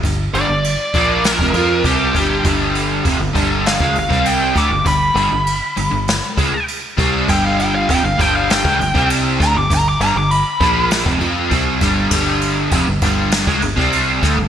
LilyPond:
<<
  \new Staff \with { instrumentName = "Lead electric guitar" } { \time 4/4 \key c \major \tempo 4 = 99 r8 d''4. bes'8 bes'8 g'4 | r2 f''8 f''8 g''8 d'''8 | b''2. r4 | g''16 f''16 g''16 f''16 g''16 f''16 g''16 f''16 g''4 r8 bes''16 d'''16 |
bes''16 d'''16 bes''16 d'''16 b''4 r2 | r1 | }
  \new Staff \with { instrumentName = "Overdriven electric guitar" } { \clef bass \time 4/4 \key c \major <g, d>8 <g, d>16 <g, d>8 r16 <bes, f bes>8. <f, c>16 <f c' f'>8 <c g c'>8 <g, d g>8 | <g, d g>4 <f, c>16 <g, d>16 <g, d g>8. <cis aes>16 <g, d>16 <c g c'>8. <d a>16 <g, d>16 | <g, d>8 <g, d>16 <g, d>8 r16 <g, d>16 <g, d>8 r16 <cis aes>16 r8. <c g c'>8 | <g, d g>4 <f, c>16 <g, d>16 <g, d g>8. <cis aes>16 <g, d>16 <c g c'>8. <d a>16 <g, d>16 |
<g, d>8 <g, d>16 <g, d>8 r16 <bes, f bes>8. <f, c>16 <f c' f'>8 <c g c'>8 <g, d g>8 | <g, d g>4 <f, c>16 <g, d>16 <g, d g>8. <cis aes>16 <g, d>16 <c g c'>8. <d a>16 <g, d>16 | }
  \new Staff \with { instrumentName = "Fingered electric bass" } { \clef bass \time 4/4 \key c \major g,,8 g,,16 g,,8 r16 bes,,8. f,,16 f,8 c,8 g,,8 | g,,4 f,,16 g,,16 g,,8. cis,16 g,,16 c,8. d,16 g,,16 | g,,8 g,,16 g,,8 r16 g,,16 g,,8 r16 cis,16 r8. c,8 | g,,4 f,,16 g,,16 g,,8. cis,16 g,,16 c,8. d,16 g,,16 |
g,,8 g,,16 g,,8 r16 bes,,8. f,,16 f,8 c,8 g,,8 | g,,4 f,,16 g,,16 g,,8. cis,16 g,,16 c,8. d,16 g,,16 | }
  \new DrumStaff \with { instrumentName = "Drums" } \drummode { \time 4/4 <cymc bd>8 cymc8 cymc8 <cymc bd>8 <cymc sn>16 bd16 cymc8 <cymc bd>8 <cymc bd>8 | <cymc bd>8 cymc8 <cymc bd>8 <cymc bd>8 <cymc sn>16 bd16 cymc16 bd16 cymc8 <cymc bd sn>8 | <cymc bd>8 cymc8 cymc8 cymc8 <cymc sn>8 <cymc bd>8 cymc8 <cymc bd>8 | <cymc bd>8 cymc8 <cymc bd>8 <cymc bd>8 <cymc sn>16 bd16 cymc16 bd16 cymc8 <cymc bd sn>8 |
<cymc bd>8 cymc8 cymc8 <cymc bd>8 <cymc sn>16 bd16 cymc8 <cymc bd>8 <cymc bd sn>8 | <cymc bd>8 cymc8 <cymc bd>8 <cymc bd>8 <cymc sn>16 bd16 cymc16 bd16 cymc8 <cymc bd sn>8 | }
>>